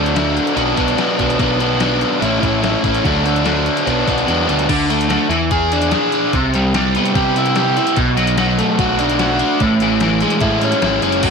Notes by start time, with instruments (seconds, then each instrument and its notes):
Already playing: picked electric bass D2, overdriven electric guitar D3 F#3 A3 D4
0.06 closed hi-hat
0.15 overdriven electric guitar D3 F#3 A3 D4, snare, closed hi-hat
0.37 closed hi-hat
0.47 closed hi-hat
0.55 picked electric bass B1, overdriven electric guitar B2 F#3 B3 D4, closed hi-hat
0.76 picked electric bass B1, overdriven electric guitar F#3 B3 D4, kick, closed hi-hat
0.88 closed hi-hat
0.97 overdriven electric guitar B2 F#3 B3 D4, snare, closed hi-hat
1.17 picked electric bass B1, overdriven electric guitar F#3 B3 D4, kick, closed hi-hat
1.30 closed hi-hat
1.39 picked electric bass B1, overdriven electric guitar B2 F#3 B3 D4, kick, closed hi-hat
1.59 overdriven electric guitar F#3 B3 D4, closed hi-hat
1.79 overdriven electric guitar B2 F#3 B3 D4, snare, closed hi-hat
2.01 closed hi-hat
2.20 picked electric bass A1, overdriven electric guitar A2 E3 A3 C#4 E4, closed hi-hat
2.40 picked electric bass A1, overdriven electric guitar A3 C#4 E4, kick, closed hi-hat
2.62 overdriven electric guitar E3 A3 C#4 E4, snare, closed hi-hat
2.83 picked electric bass A1, overdriven electric guitar A3 C#4 E4, kick, closed hi-hat
2.95 closed hi-hat
3.04 picked electric bass D2, overdriven electric guitar D3 F#3 A3 D4, kick, closed hi-hat
3.24 overdriven electric guitar F#3 A3 D4, closed hi-hat
3.36 snare, closed hi-hat
3.45 overdriven electric guitar D3 F#3 A3 D4, snare, closed hi-hat
3.66 closed hi-hat
3.77 closed hi-hat
3.86 picked electric bass B1, overdriven electric guitar B2 F#3 B3 D4, closed hi-hat
4.05 picked electric bass B1, overdriven electric guitar F#3 B3 D4, kick, closed hi-hat
4.18 closed hi-hat
4.26 picked electric bass E2, overdriven electric guitar B2 F#3 B3 D4, closed hi-hat
4.46 picked electric bass D2, overdriven electric guitar F#3 B3 D4, closed hi-hat
4.59 closed hi-hat
4.69 picked electric bass D2, overdriven electric guitar D3, kick, closed hi-hat, crash
4.89 overdriven electric guitar A3, closed hi-hat
5.01 closed hi-hat
5.09 overdriven electric guitar D3, snare, closed hi-hat
5.29 picked electric bass E2, overdriven electric guitar E3, closed hi-hat
5.51 overdriven electric guitar G#4, kick, closed hi-hat
5.72 overdriven electric guitar D4, closed hi-hat
5.82 closed hi-hat
5.91 overdriven electric guitar G#4, snare, closed hi-hat
6.12 overdriven electric guitar D4, closed hi-hat
6.33 picked electric bass C2, overdriven electric guitar C3, kick, closed hi-hat
6.54 overdriven electric guitar G3, closed hi-hat
6.74 overdriven electric guitar G3, snare, closed hi-hat
6.95 overdriven electric guitar B3, closed hi-hat
7.05 closed hi-hat
7.15 picked electric bass C3, overdriven electric guitar G4, kick, closed hi-hat
7.36 overdriven electric guitar E4, closed hi-hat
7.46 closed hi-hat
7.56 overdriven electric guitar G4, snare, closed hi-hat
7.76 overdriven electric guitar E4, closed hi-hat
7.87 closed hi-hat
7.96 picked electric bass B1, overdriven electric guitar B2, kick, closed hi-hat
8.17 overdriven electric guitar F#3, closed hi-hat
8.27 closed hi-hat
8.37 overdriven electric guitar F#3, snare, closed hi-hat
8.58 overdriven electric guitar A3, closed hi-hat
8.78 picked electric bass B1, overdriven electric guitar F#4, kick, closed hi-hat
8.99 overdriven electric guitar D4, closed hi-hat
9.10 closed hi-hat
9.19 overdriven electric guitar F#4, snare, closed hi-hat
9.39 overdriven electric guitar D4, closed hi-hat
9.60 picked electric bass A1, overdriven electric guitar A2, kick, closed hi-hat
9.80 overdriven electric guitar E3, closed hi-hat
10.00 overdriven electric guitar E3, snare, closed hi-hat
10.21 overdriven electric guitar G#3, closed hi-hat
10.30 closed hi-hat
10.40 picked electric bass A2, overdriven electric guitar E4, kick, closed hi-hat
10.61 overdriven electric guitar C#4, closed hi-hat
10.72 closed hi-hat
10.82 picked electric bass G#1, overdriven electric guitar E4, snare, closed hi-hat
11.02 picked electric bass F#1, overdriven electric guitar C#4, closed hi-hat
11.12 closed hi-hat
11.23 picked electric bass F#1, overdriven electric guitar F#3 A3 C#4 F#4, kick, open hi-hat, crash